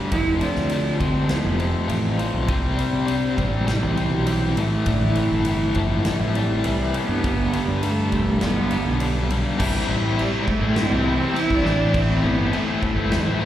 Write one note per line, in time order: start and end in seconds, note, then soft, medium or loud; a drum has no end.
0.00 0.10 D3 medium
0.00 0.11 G3 medium
0.00 0.12 A3 medium
0.00 0.12 D4 medium
0.00 0.11 G4 medium
0.00 0.12 B4 medium
0.11 0.40 F1 medium
0.11 0.40 F2 medium
0.11 0.40 C3 medium
0.11 1.29 F3 medium
0.11 0.41 F3 loud
0.11 0.39 E4 loud
0.11 kick loud
0.11 ride medium
0.40 0.70 F2 medium
0.40 0.70 C3 medium
0.40 0.71 F3 medium
0.40 0.99 A3 medium
0.40 1.00 D4 loud
0.40 ride medium
0.56 0.99 D2 medium
0.56 snare soft
0.69 0.99 F2 medium
0.69 0.99 C3 medium
0.69 0.99 F3 medium
0.69 2.17 C4 medium
0.69 ride medium
0.98 1.29 D2 medium
0.98 1.28 F2 medium
0.98 1.28 C3 medium
0.98 1.29 F3 medium
0.98 1.58 A3 medium
0.98 1.31 C4 medium
0.98 kick medium
0.98 ride medium
1.29 1.58 F2 medium
1.29 1.58 C3 medium
1.29 2.49 F3 medium
1.29 1.59 F3 medium
1.29 1.61 B3 medium
1.29 snare medium
1.29 ride medium
1.45 1.73 F1 medium
1.59 1.86 F2 medium
1.59 1.87 C3 medium
1.59 1.87 F3 medium
1.59 2.49 A3 medium
1.59 2.19 A3 medium
1.59 ride medium
1.87 2.18 A1 medium
1.87 2.16 F2 medium
1.87 2.17 C3 medium
1.87 2.18 F3 medium
1.87 2.49 F4 medium
1.87 ride medium
2.17 2.47 F2 medium
2.17 2.47 C3 medium
2.17 2.47 F3 medium
2.17 4.53 G3 medium
2.17 3.06 C4 medium
2.17 ride medium
2.33 2.48 B1 medium
2.48 2.77 C2 medium
2.48 3.97 C3 medium
2.48 2.76 C3 medium
2.48 2.76 G3 loud
2.48 2.77 C4 loud
2.48 kick loud
2.48 ride medium
2.77 3.05 C3 medium
2.77 3.36 G3 medium
2.77 3.05 G3 medium
2.77 3.07 C4 medium
2.77 ride medium
2.93 3.36 C3 medium
3.06 3.36 C3 medium
3.06 3.37 G3 medium
3.06 3.38 C4 loud
3.06 4.56 D4 medium
3.06 ride medium
3.37 3.83 A1 medium
3.37 3.65 C3 medium
3.37 3.96 G3 medium
3.37 3.66 G3 medium
3.37 3.66 C4 medium
3.37 kick medium
3.37 ride medium
3.66 3.95 C3 medium
3.66 4.56 E3 medium
3.66 3.96 G3 medium
3.66 3.97 C4 loud
3.66 snare medium
3.66 ride medium
3.83 4.11 C2 medium
3.96 4.25 C3 medium
3.96 4.57 G3 medium
3.96 4.25 G3 medium
3.96 4.25 C4 medium
3.96 ride medium
4.12 4.54 B1 medium
4.26 4.54 C3 medium
4.26 4.55 G3 medium
4.26 4.55 C4 medium
4.26 4.57 E4 medium
4.26 ride medium
4.56 4.71 A1 medium
4.56 4.85 A2 medium
4.56 4.86 E3 medium
4.56 4.86 A3 loud
4.56 ride medium
4.86 5.15 A1 loud
4.86 6.34 A2 medium
4.86 5.15 A2 medium
4.86 5.03 D3 medium
4.86 5.15 E3 medium
4.86 5.16 A3 loud
4.86 kick loud
4.86 ride medium
5.01 5.46 E3 medium
5.15 5.45 A2 medium
5.15 5.46 E3 medium
5.15 5.46 A3 medium
5.15 5.75 C4 medium
5.15 ride medium
5.31 5.73 G1 medium
5.45 5.75 A2 medium
5.45 5.78 E3 medium
5.45 5.75 E3 medium
5.45 5.76 A3 medium
5.45 6.93 E4 medium
5.45 ride medium
5.75 6.04 G1 medium
5.75 6.05 A2 medium
5.75 6.05 E3 medium
5.75 6.37 F3 loud
5.75 6.06 A3 medium
5.75 6.33 C4 medium
5.75 kick medium
5.75 ride medium
6.05 6.34 A2 medium
6.05 6.35 E3 medium
6.05 7.23 A3 medium
6.05 6.35 A3 loud
6.05 snare medium
6.05 ride medium
6.20 6.48 A1 medium
6.34 6.64 A2 medium
6.34 6.64 E3 medium
6.34 6.94 G3 medium
6.34 6.64 A3 medium
6.34 7.23 C4 medium
6.34 ride medium
6.64 6.92 C2 medium
6.64 6.93 A2 medium
6.64 6.93 E3 medium
6.64 6.94 A3 medium
6.64 7.23 B4 medium
6.64 ride medium
6.94 7.22 A2 medium
6.94 7.22 E3 medium
6.94 7.22 A3 medium
6.94 7.24 E4 medium
6.94 ride medium
7.03 7.67 B3 loud
7.09 7.23 G2 medium
7.23 7.52 G1 medium
7.23 7.51 G2 medium
7.23 8.71 G2 medium
7.23 7.52 D3 medium
7.23 7.52 G3 loud
7.23 kick loud
7.23 ride medium
7.53 7.81 G2 medium
7.53 7.82 D3 medium
7.53 7.83 G3 medium
7.53 8.11 G3 medium
7.53 ride medium
7.65 8.10 G2 medium
7.65 7.83 G3 medium
7.83 8.12 G2 medium
7.83 8.12 D3 medium
7.83 8.13 G3 medium
7.83 8.38 A3 loud
7.83 9.29 B3 medium
7.83 ride medium
8.12 8.55 E1 medium
8.12 8.42 G2 medium
8.12 8.42 D3 medium
8.12 8.70 G3 medium
8.12 8.42 G3 medium
8.12 kick medium
8.12 ride medium
8.41 8.70 G2 medium
8.41 9.59 D3 medium
8.41 8.71 D3 medium
8.41 8.72 G3 medium
8.41 9.26 B3 loud
8.41 snare medium
8.41 ride medium
8.55 8.84 G1 medium
8.71 9.00 G2 medium
8.71 9.00 D3 medium
8.71 9.60 G3 medium
8.71 9.00 G3 medium
8.71 ride medium
8.85 9.27 B1 medium
9.00 9.30 G2 medium
9.00 9.30 D3 loud
9.00 9.30 G3 loud
9.00 9.60 D4 medium
9.00 ride medium
9.29 9.43 B1 medium
9.29 9.58 G2 medium
9.29 9.58 D3 medium
9.29 9.58 G3 medium
9.29 9.60 B3 medium
9.29 ride medium
9.58 9.74 C2 medium
9.58 9.86 C3 loud
9.58 10.49 E3 medium
9.58 9.88 G3 loud
9.58 9.89 C4 loud
9.58 9.89 E4 loud
9.58 kick loud
9.58 crash loud
9.58 crash medium
9.88 10.16 A1 medium
9.88 10.14 C3 medium
9.88 10.16 G3 medium
9.88 10.17 C4 medium
9.88 10.17 E4 medium
10.15 10.46 C3 loud
10.15 10.33 G3 loud
10.15 10.33 C4 loud
10.15 10.31 E4 loud
10.15 crash medium
10.20 10.33 G3 medium
10.31 10.47 G3 medium
10.31 10.81 A3 medium
10.31 10.47 C4 medium
10.31 10.47 E4 medium
10.47 11.63 C3 medium
10.47 11.64 E3 medium
10.47 11.64 G3 medium
10.47 11.63 C4 medium
10.47 11.66 E4 medium
10.47 muted overdriven electric guitar stroke soft
10.47 kick medium
10.61 10.75 A1 loud
10.61 10.91 G3 medium
10.61 10.91 C4 medium
10.61 10.90 E4 medium
10.76 10.90 G2 loud
10.76 11.08 C4 loud
10.76 snare loud
10.76 crash medium
10.91 11.19 C2 medium
10.91 11.05 G3 medium
10.91 11.06 C4 medium
10.91 11.07 E4 medium
11.06 11.34 C3 medium
11.06 11.21 G3 medium
11.06 11.20 C4 medium
11.06 11.41 C4 loud
11.06 11.20 E4 medium
11.20 11.34 G3 medium
11.20 11.34 C4 medium
11.20 11.36 E4 medium
11.35 11.63 C3 medium
11.35 11.63 G3 medium
11.35 11.63 C4 loud
11.35 11.66 E4 loud
11.35 crash medium
11.39 11.56 E4 loud
11.50 11.63 C2 medium
11.50 kick medium
11.55 11.99 D4 loud
11.63 12.20 A1 loud
11.63 11.91 A2 medium
11.63 11.93 E3 loud
11.63 11.80 A3 loud
11.63 11.79 C4 loud
11.63 11.78 E4 loud
11.63 snare soft
11.79 11.93 A3 medium
11.79 11.93 C4 medium
11.79 11.95 E4 medium
11.92 12.50 A2 loud
11.92 12.21 E3 loud
11.92 12.22 A3 loud
11.92 12.22 C4 loud
11.92 12.23 E4 loud
11.92 kick loud
11.92 crash medium
11.98 12.27 C4 loud
12.22 12.51 G1 medium
12.22 12.51 E3 medium
12.22 12.52 A3 medium
12.22 12.51 C4 medium
12.22 12.53 E4 medium
12.26 12.57 B3 loud
12.51 12.96 A2 loud
12.51 12.81 E3 loud
12.51 12.68 A3 loud
12.51 12.66 C4 loud
12.51 12.66 E4 loud
12.51 crash medium
12.55 13.41 A3 loud
12.66 12.82 A3 medium
12.66 12.81 C4 medium
12.66 12.83 E4 medium
12.82 muted overdriven electric guitar stroke soft
12.82 kick medium
12.95 13.10 G1 medium
12.95 13.27 A3 medium
12.95 13.25 C4 medium
12.95 13.24 E4 medium
13.11 13.25 E2 medium
13.11 snare loud
13.11 crash medium
13.26 13.45 A1 medium
13.26 13.40 A3 medium
13.26 13.40 C4 medium
13.26 13.40 E4 medium
13.40 13.45 E3 medium
13.40 13.45 G3 loud
13.40 13.45 A3 medium
13.40 13.45 C4 medium
13.40 13.45 E4 medium